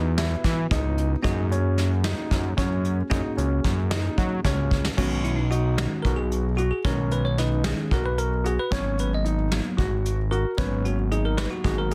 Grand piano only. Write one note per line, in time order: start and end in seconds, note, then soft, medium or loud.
0.17 0.55 E4 medium
0.72 1.09 D#4 medium
1.24 1.43 D#4 medium
1.51 1.89 C#4 medium
2.04 2.42 D#4 medium
2.57 2.95 C#4 medium
3.11 3.30 D#4 medium
3.37 3.75 C#4 medium
3.91 4.29 D#4 medium
4.45 4.83 C#4 medium
4.97 5.35 C#4 medium
5.51 5.89 D#4 medium
6.05 6.43 F#4 medium
6.59 6.77 F#4 medium
6.85 7.22 C#4 medium
7.39 7.76 D#4 medium
7.92 8.29 F#4 medium
8.44 8.63 F#4 medium
8.72 9.09 C#4 medium
9.24 9.62 D#4 medium
9.77 10.15 F#4 medium
10.31 10.50 F#4 medium
10.58 10.95 C#4 medium
11.12 11.49 D#4 medium
11.65 11.94 F#4 medium